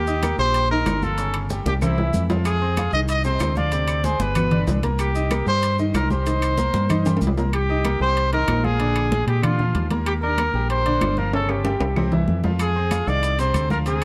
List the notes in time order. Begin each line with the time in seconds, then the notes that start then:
Already playing: D#2 G4
0.07 D#4 D#5 D#6, high conga, maracas
0.23 A#3 A#4 A#5, high conga, high timbale, low timbale, claves, maracas
0.38 A#1 G3 G4 C5 G5, high conga, maracas
0.54 high conga, high timbale, maracas
0.71 D#3 D#4 A#4 D#5, high conga
0.86 G1, high conga, high timbale, low timbale, claves, maracas
1.02 F3 F4 A4 F5, high conga, maracas
1.18 C#3 C#4 C#5, high conga, high timbale, maracas
1.34 high conga, high timbale, claves
1.50 G3 G4 G5, high conga, low timbale, maracas
1.65 C2 G4, high conga, high timbale, maracas
1.81 C3 C4 E4 C5, high conga, low conga, high timbale, claves, maracas
1.98 E3 E4 E5, high conga, low timbale
2.13 F2, high conga, maracas
2.30 F3 F4 F5, high conga, low timbale, maracas
2.45 G#4, high conga, high timbale, claves, maracas
2.62 C4 C5 C6, high conga
2.77 F3 F4 F5, high conga, high timbale, low timbale, claves, maracas
2.93 C2 D#3 D#4 D#5, high conga, maracas
3.08 D#5, high conga, high timbale, maracas
3.24 C3 C4 C5, high conga, maracas
3.40 D2, high conga, high timbale, low timbale, claves, maracas
3.56 F3 F4 D5 F5, high conga, maracas
3.72 C3 C4 C5, high conga, high timbale, maracas
3.88 high conga, high timbale, claves, maracas
4.04 G#3 G#4 C5 G#5, high conga, low timbale, maracas
4.19 G1 B4, high conga, maracas
4.35 B2 B3 B4, high conga, low conga, high timbale, claves, maracas
4.51 D3 D4 D5, high conga, low conga, high timbale
4.67 C2, high conga, low timbale, maracas
4.83 A#3 A#4 A#5, high conga, high timbale, maracas
4.99 G4, high conga, high timbale, claves, maracas
5.15 D#4 D#5 D#6, high conga, maracas
5.31 A#3 A#4 A#5, high conga, high timbale, low timbale, claves, maracas
5.46 G2 G3 G4 C5 G5, high conga, maracas
5.62 high conga, high timbale, maracas
5.79 D#3 D#4 D#5, high conga, maracas
5.94 C2 A#4, high conga, high timbale, low timbale, claves, maracas
6.10 G3 G4 C5 G5, high conga, maracas
6.26 D#3 D#4 D#5, high conga, high timbale, maracas
6.42 high timbale, claves, maracas
6.58 A#3 A#4 A#5, high conga, low timbale, maracas
6.74 G2, high conga, maracas
6.89 D#3 D#4 D#5, high conga, low conga, high timbale, claves, maracas
7.06 G3 G4 G5, high conga, low conga, high timbale, maracas
7.17 high timbale
7.21 C2, high conga, maracas
7.27 low timbale
7.38 A#3 A#4 A#5, low timbale, maracas
7.53 G4, high conga, high timbale, claves
7.69 D#4 D#5 D#6, high conga
7.85 A#3 A#4 A#5, high conga, high timbale, claves
8.00 C2 G3 G4 C5 G5, high conga
8.17 high conga, high timbale
8.33 D#3 D#4 A#4 D#5, high conga, high timbale
8.48 A#1, high conga, high timbale, low timbale, claves
8.64 F3 F4 G#4 F5, high conga
8.80 D3 D4 D5, high conga, high timbale
8.96 high conga, high timbale, claves
9.11 G#3 G#4 G#5, high conga
9.27 A#2 G4, high conga, high timbale
9.42 D3 D4 F4 D5, high conga, low conga, high timbale, claves
9.59 F3 F4 F5, high conga, low conga
9.75 D#2, high conga, high timbale
9.91 A#3 A#4 A#5, high conga, high timbale
10.06 G4, high conga, high timbale, claves
10.22 D4 A#4 D5 D6, high conga
10.38 A#3 A#4 A#5, high conga, high timbale, claves
10.53 A#1 G3 G4 G5, high conga
10.69 C5, high conga, high timbale
10.85 D3 D4 D5, high conga, high timbale
11.01 G1, high conga, high timbale, low timbale, claves
11.17 F3 F4 A#4 F5, high conga
11.33 C#3 C#4 A4 C#5, high conga, high timbale
11.49 G4, high conga, high timbale, claves
11.65 G3 G4 G5, high conga, high timbale
11.80 C2, high conga, high timbale
11.96 C3 C4 C5, high conga, low conga, low timbale, claves
12.12 E3 E4 E5, high conga, low conga, low timbale
12.28 F2, high conga
12.44 F3 F4 F5, high conga, low timbale
12.59 G#4, high conga, high timbale, claves, maracas
12.75 C4 C5 C6, high conga
12.91 F3 F4 F5, high conga, high timbale, claves, maracas
13.07 C2 D#3 D#4 D5 F5, high conga, maracas
13.23 high conga, high timbale, maracas
13.39 C3 C4 C5, high conga, high timbale, maracas
13.54 D2, high conga, high timbale, claves, maracas
13.70 F3 F4 A#4 F5, high conga, maracas
13.86 C3 C4 G#4 C5, high conga, high timbale, maracas